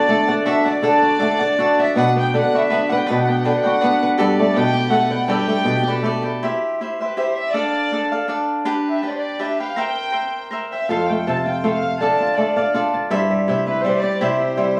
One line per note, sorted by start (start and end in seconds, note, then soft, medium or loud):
0.00 0.81 D3 medium
0.00 1.22 B3 medium
0.00 0.45 F#4 medium
0.00 0.44 D5 loud
0.08 1.20 A3 medium
0.08 0.28 D4 soft
0.08 0.28 A4 medium
0.08 0.28 D5 medium
0.08 0.27 F#5 soft
0.28 0.45 A4 soft
0.28 1.39 D5 medium
0.28 0.45 D5 medium
0.28 0.45 F#5 soft
0.45 0.66 D4 medium
0.45 1.02 F#4 medium
0.45 0.64 A4 medium
0.45 0.64 D5 medium
0.45 0.67 E5 medium
0.45 0.63 F#5 medium
0.65 0.82 A4 soft
0.65 0.83 D5 soft
0.65 1.79 D5 loud
0.65 0.83 F#5 soft
0.65 1.52 A5 medium
0.82 2.01 D3 medium
0.82 1.19 D4 medium
0.82 1.18 A4 medium
0.82 1.20 D5 medium
0.82 1.20 F#5 medium
1.02 1.58 F#4 medium
1.19 3.20 A3 medium
1.19 1.40 D4 medium
1.19 1.40 A4 soft
1.19 1.39 D5 medium
1.19 1.38 F#5 medium
1.39 1.59 A4 soft
1.39 1.58 D5 medium
1.39 2.51 D5 medium
1.39 1.58 F#5 medium
1.58 1.78 D4 medium
1.58 2.54 F#4 medium
1.58 1.79 A4 medium
1.58 1.79 D5 medium
1.58 1.78 F#5 medium
1.79 1.97 A4 soft
1.79 1.97 D5 soft
1.79 1.97 E5 loud
1.79 1.97 F#5 soft
1.79 2.66 A5 medium
1.96 2.39 B2 medium
1.96 2.33 D4 medium
1.96 2.35 B4 medium
1.96 2.35 D5 medium
1.96 2.15 F#5 medium
1.96 2.34 F#5 medium
2.16 2.71 B3 medium
2.16 2.34 G5 medium
2.34 3.13 D3 medium
2.34 2.53 D4 soft
2.34 2.54 B4 soft
2.34 2.53 D5 soft
2.34 2.52 F#5 soft
2.38 2.54 F#5 medium
2.53 3.65 F#4 medium
2.53 2.69 B4 soft
2.53 2.70 D5 soft
2.53 2.92 E5 medium
2.53 2.70 F#5 soft
2.70 3.29 B3 medium
2.70 2.90 D4 medium
2.70 2.89 B4 medium
2.70 2.89 D5 medium
2.70 2.88 F#5 medium
2.89 3.05 B4 soft
2.89 4.02 B4 medium
2.89 3.07 D5 soft
2.89 3.07 F#5 soft
2.89 2.98 F#5 medium
2.97 3.05 G5 medium
3.06 3.45 D4 medium
3.06 3.44 B4 medium
3.06 3.46 D5 medium
3.06 3.14 F#5 medium
3.06 3.45 F#5 medium
3.10 3.50 B2 medium
3.14 3.23 G5 medium
3.22 3.30 F#5 medium
3.29 3.83 B3 medium
3.29 3.37 G5 medium
3.38 3.46 F#5 medium
3.44 4.24 D3 medium
3.44 3.64 D4 medium
3.44 3.63 B4 medium
3.44 3.62 D5 medium
3.44 3.61 F#5 soft
3.44 3.53 G5 medium
3.54 3.62 F#5 medium
3.62 4.26 F#4 medium
3.62 3.80 B4 soft
3.62 3.80 D5 soft
3.62 3.81 F#5 soft
3.62 3.70 G5 medium
3.73 4.03 F#5 medium
3.81 5.70 B3 medium
3.81 4.18 D4 medium
3.81 4.17 B4 medium
3.81 4.18 D5 medium
3.81 4.19 F#5 medium
4.03 5.26 B4 medium
4.18 4.60 G2 loud
4.18 4.56 G4 medium
4.18 4.55 A4 medium
4.18 4.55 B4 medium
4.18 4.56 D5 medium
4.38 4.90 A3 medium
4.38 4.54 D5 medium
4.56 5.34 B2 medium
4.56 4.91 G4 medium
4.56 4.91 A4 medium
4.56 4.92 B4 medium
4.56 4.92 D5 medium
4.56 4.92 G5 loud
4.73 5.83 G4 medium
4.90 5.47 A3 medium
4.90 5.10 G4 medium
4.90 5.10 A4 medium
4.90 5.10 B4 medium
4.90 5.09 D5 medium
4.90 5.28 F#5 medium
5.10 5.29 A4 soft
5.10 5.28 B4 soft
5.10 5.28 D5 soft
5.10 6.04 G5 medium
5.25 5.71 G2 medium
5.25 5.64 G4 medium
5.25 6.22 G5 loud
5.30 5.65 A4 medium
5.30 5.65 B4 medium
5.30 5.66 D5 medium
5.47 6.02 A3 medium
5.64 6.47 B2 medium
5.64 5.85 G4 soft
5.64 5.86 A4 soft
5.64 5.86 B4 medium
5.64 5.86 D5 medium
5.83 7.24 G4 medium
5.87 6.03 A4 soft
5.87 6.04 B4 medium
5.87 6.04 D5 medium
6.02 8.02 A3 medium
6.02 6.24 G4 medium
6.02 6.24 A4 medium
6.02 6.24 B4 medium
6.02 6.24 D5 medium
6.22 6.42 B4 soft
6.22 6.42 D5 soft
6.22 7.16 G5 medium
6.27 6.43 A4 soft
6.43 6.80 E4 medium
6.43 6.80 G4 medium
6.43 6.80 C5 medium
6.43 6.81 E5 medium
6.81 7.00 E4 soft
6.81 7.00 G4 soft
6.81 7.00 C5 medium
6.81 6.99 E5 soft
6.99 7.16 G4 soft
6.99 7.16 B4 medium
6.99 7.16 C5 soft
6.99 7.17 E5 soft
7.17 7.54 E4 medium
7.17 7.54 G4 medium
7.17 7.37 C5 medium
7.17 7.54 C5 medium
7.17 7.55 E5 medium
7.35 7.53 E5 loud
7.52 7.91 D4 medium
7.52 7.91 A4 medium
7.52 8.27 D5 loud
7.52 7.92 D5 medium
7.52 7.92 F5 medium
7.92 8.11 D4 soft
7.92 8.12 A4 soft
7.92 8.11 D5 soft
7.92 8.10 F5 soft
8.12 8.28 A4 medium
8.12 8.28 D5 soft
8.12 8.28 F5 soft
8.28 8.64 D4 medium
8.28 8.65 A4 medium
8.28 8.65 D5 medium
8.28 8.66 F5 medium
8.65 9.02 D4 medium
8.65 9.01 G4 medium
8.65 9.02 B4 medium
8.65 9.02 G5 medium
8.89 9.03 E5 medium
9.03 9.38 D4 soft
9.03 9.38 G4 soft
9.03 9.39 B4 medium
9.03 9.11 D5 medium
9.03 9.40 G5 soft
9.10 9.17 C5 medium
9.19 9.40 D5 medium
9.39 9.59 D4 medium
9.39 9.59 G4 medium
9.39 9.59 B4 medium
9.39 9.59 E5 medium
9.39 9.59 G5 medium
9.59 9.77 G4 soft
9.59 9.77 B4 soft
9.59 9.77 F5 medium
9.59 9.77 G5 soft
9.76 10.11 A#4 medium
9.76 10.11 C5 medium
9.76 10.12 E5 medium
9.76 10.52 G5 loud
9.76 10.13 G5 medium
10.12 10.49 A#4 soft
10.12 10.50 C5 medium
10.12 10.51 E5 soft
10.12 10.52 G5 soft
10.51 10.71 A#4 medium
10.51 10.71 C5 medium
10.51 10.72 E5 medium
10.51 10.71 G5 medium
10.72 10.90 C5 soft
10.72 10.88 E5 medium
10.72 10.90 E5 soft
10.72 10.90 G5 soft
10.88 12.05 F2 medium
10.88 11.27 F4 medium
10.88 11.26 A4 medium
10.88 11.27 C5 medium
10.88 11.08 F5 medium
10.88 11.27 F5 medium
11.10 11.64 A3 medium
11.10 11.27 G5 medium
11.27 12.05 C3 medium
11.27 11.63 F4 soft
11.27 11.63 A4 soft
11.27 11.64 C5 soft
11.27 11.64 F5 medium
11.27 11.47 A5 medium
11.46 12.20 F4 medium
11.46 11.63 G5 medium
11.64 12.37 A3 medium
11.64 12.00 F4 medium
11.64 12.01 A4 soft
11.64 12.01 C5 medium
11.64 12.01 F5 medium
11.64 12.02 F5 medium
11.83 12.83 F5 medium
12.01 13.15 D3 medium
12.01 12.36 D4 medium
12.01 12.37 A4 medium
12.01 12.37 D5 medium
12.01 12.38 F5 medium
12.01 12.37 A5 medium
12.20 12.74 F4 medium
12.36 14.37 A3 medium
12.36 12.56 D4 soft
12.36 12.57 A4 soft
12.36 12.92 D5 medium
12.36 12.57 D5 soft
12.36 12.55 F5 soft
12.56 12.74 A4 soft
12.56 13.67 D5 medium
12.56 12.74 D5 soft
12.56 12.74 F5 soft
12.74 13.10 D4 soft
12.74 13.73 F4 medium
12.74 13.11 A4 medium
12.74 13.11 D5 medium
12.74 13.11 F5 medium
12.94 13.81 A5 medium
13.10 13.52 G2 medium
13.10 13.47 E4 medium
13.10 13.47 G4 medium
13.10 13.47 C5 medium
13.10 13.47 E5 medium
13.30 13.83 G3 medium
13.48 13.88 C3 medium
13.48 13.83 E4 medium
13.48 13.84 G4 medium
13.48 13.85 C5 medium
13.48 13.85 E5 medium
13.67 14.40 E4 medium
13.67 13.83 B4 medium
13.82 14.25 G3 medium
13.82 14.20 E4 medium
13.82 14.20 G4 medium
13.82 14.21 B4 medium
13.82 14.02 C5 medium
13.86 14.22 D5 medium
14.00 14.80 G4 medium
14.00 14.19 D5 medium
14.19 14.80 C3 medium
14.19 14.56 E4 medium
14.19 14.56 G4 medium
14.19 14.80 C5 medium
14.19 14.56 C5 medium
14.19 14.58 E5 medium
14.40 14.80 E4 medium
14.57 14.80 G3 medium
14.57 14.77 E4 soft
14.57 14.77 G4 soft
14.57 14.77 C5 medium
14.57 14.76 E5 medium